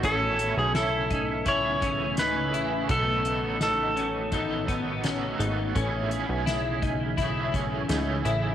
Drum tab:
HH |xxxxxxxx|xxxxxxxx|xxxxxxxx|
SD |--o---o-|--o---o-|--o---o-|
BD |o--ooo--|o---oo--|o--ooo--|